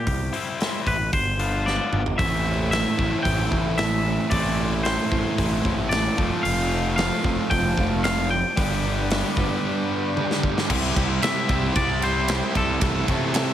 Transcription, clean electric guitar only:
0.00 0.90 G4 medium
0.87 1.13 B4 medium
1.13 1.89 C5 medium
1.66 2.16 D5 medium
2.18 2.70 E5 medium
2.71 3.22 E5 medium
3.23 3.77 G5 loud
3.78 4.33 E5 medium
4.30 4.83 D5 medium
4.83 5.89 C5 medium
5.89 6.40 D5 medium
6.43 6.93 F5 loud
6.96 7.46 F5 medium
7.50 8.00 G5 medium
8.04 8.30 F5 medium
8.30 9.33 G5 medium
11.23 11.76 E5 loud
11.76 12.03 D5 loud
12.04 12.52 C5 medium
12.57 13.53 A4 medium

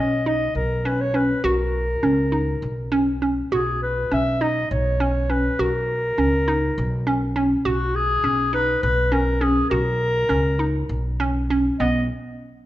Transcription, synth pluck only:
0.00 0.13 C#4 medium
0.26 0.58 D#4 medium
0.85 1.01 C#4 medium
1.14 1.30 C#4 medium
1.44 1.76 F#4 medium
2.03 2.19 C#4 medium
2.32 2.65 D#4 medium
2.92 3.08 C#4 medium
3.22 3.38 C#4 medium
3.52 3.85 F#4 medium
4.12 4.28 C#4 medium
4.41 4.74 D#4 medium
5.00 5.16 C#4 medium
5.30 5.46 C#4 medium
5.59 5.92 F#4 medium
6.18 6.34 C#4 medium
6.48 6.80 D#4 medium
7.07 7.23 C#4 medium
7.36 7.52 C#4 medium
7.65 7.97 F#4 medium
8.24 8.40 C#4 medium
8.53 8.85 D#4 medium
9.12 9.28 C#4 medium
9.41 9.58 C#4 medium
9.71 10.04 F#4 medium
10.29 10.46 C#4 medium
10.59 10.93 D#4 medium
11.20 11.37 C#4 medium
11.50 11.67 C#4 medium
11.80 12.08 B3 medium

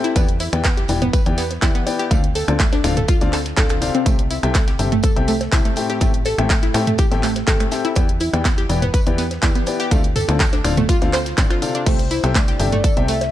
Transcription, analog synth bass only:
0.16 0.49 E2 loud
0.53 0.86 E2 medium
0.89 1.23 E1 loud
1.26 1.59 E2 medium
1.62 1.73 E2 medium
2.11 2.44 D2 loud
2.48 2.81 D2 medium
2.84 3.18 D1 loud
3.21 3.54 D2 medium
3.57 3.91 D1 loud
4.06 4.40 C2 loud
4.43 4.76 C2 medium
4.79 5.13 G1 loud
5.16 5.49 C2 medium
5.52 5.63 C2 medium
6.01 6.35 A1 loud
6.38 6.71 A1 medium
6.74 7.08 A2 loud
7.12 7.44 A1 medium
7.47 7.58 A1 medium
7.96 8.30 E2 loud
8.33 8.66 E2 medium
8.69 9.03 E1 loud
9.07 9.39 E2 medium
9.43 9.53 E2 medium
9.91 10.25 D2 loud
10.29 10.61 D2 medium
10.65 10.98 D1 loud
11.02 11.34 D2 medium
11.38 11.48 A1 loud
11.86 12.20 C2 loud
12.24 12.56 C2 medium
12.60 12.93 G1 loud
12.97 13.30 C2 medium

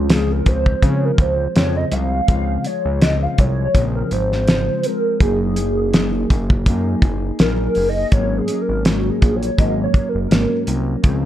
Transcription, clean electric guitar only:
0.08 0.45 C#3 medium
0.08 0.46 F3 medium
0.08 0.46 G#3 medium
0.08 0.44 C4 medium
0.45 0.82 F3 soft
0.45 0.82 G#3 soft
0.45 0.82 C4 medium
0.82 1.19 C#3 medium
0.82 1.19 F3 medium
0.82 1.19 G#3 medium
0.82 1.17 C4 medium
1.18 1.55 F3 soft
1.18 1.56 G#3 soft
1.18 1.55 C4 medium
1.55 1.92 C#3 medium
1.55 1.92 F3 medium
1.55 1.92 G#3 medium
1.55 1.90 C4 medium
1.91 2.28 F3 soft
1.91 2.28 G#3 soft
1.91 2.28 C4 soft
2.28 2.65 C#3 medium
2.28 2.65 F3 medium
2.28 2.66 G#3 medium
2.28 2.66 C4 medium
2.67 3.01 F3 soft
2.67 3.03 G#3 soft
3.01 3.38 C#3 medium
3.01 3.39 F3 medium
3.01 3.38 G#3 medium
3.01 3.40 C4 medium
3.39 3.74 F3 soft
3.39 3.75 G#3 medium
3.74 4.11 C#3 medium
3.74 4.11 F3 medium
3.74 4.11 G#3 medium
3.74 4.10 C4 medium
4.11 4.48 F3 soft
4.11 4.48 G#3 soft
4.11 4.47 C4 medium
4.48 4.84 C#3 medium
4.48 4.85 F3 medium
4.48 4.84 G#3 medium
4.48 4.82 C4 medium
4.84 5.20 F3 soft
4.84 5.21 G#3 soft
4.84 5.20 C4 soft
5.20 5.57 F#3 medium
5.20 5.57 A#3 medium
5.20 5.58 D#4 medium
5.20 5.56 G#4 medium
5.57 5.93 A#3 soft
5.57 5.94 D#4 medium
5.57 5.93 G#4 medium
5.94 6.30 F#3 medium
5.94 6.30 A#3 medium
5.94 6.30 D#4 medium
5.94 6.28 G#4 medium
6.30 6.67 A#3 soft
6.30 6.67 D#4 medium
6.30 6.66 G#4 medium
6.67 7.03 F#3 medium
6.67 7.04 A#3 medium
6.67 7.03 D#4 medium
6.67 7.02 G#4 medium
7.03 7.40 A#3 soft
7.03 7.40 D#4 medium
7.03 7.39 G#4 medium
7.40 7.76 F#3 medium
7.40 7.77 A#3 medium
7.40 7.77 D#4 medium
7.40 7.76 G#4 medium
7.77 8.13 A#3 soft
7.77 8.14 D#4 soft
7.77 8.13 G#4 medium
8.12 8.49 G#2 medium
8.12 8.49 F#3 medium
8.12 8.49 A#3 medium
8.12 8.48 C#4 medium
8.49 8.84 F#3 soft
8.49 8.86 A#3 soft
8.49 8.85 C#4 medium
8.84 9.21 G#2 medium
8.84 9.22 F#3 medium
8.84 9.21 A#3 medium
8.84 9.20 C#4 medium
9.21 9.56 F#3 soft
9.21 9.57 A#3 soft
9.21 9.58 C#4 medium
9.56 9.94 G#2 medium
9.56 9.94 F#3 medium
9.56 9.93 A#3 medium
9.56 9.91 C#4 medium
9.92 10.29 F#3 soft
9.92 10.30 A#3 soft
9.92 10.30 C#4 medium
10.29 10.66 G#2 medium
10.29 10.67 F#3 medium
10.29 10.66 A#3 medium
10.29 10.65 C#4 medium
10.66 11.03 F#3 soft
10.66 11.04 A#3 medium
10.66 11.03 C#4 medium
11.02 11.25 C#3 medium
11.02 11.25 F3 medium
11.02 11.25 G#3 medium
11.02 11.25 C4 medium

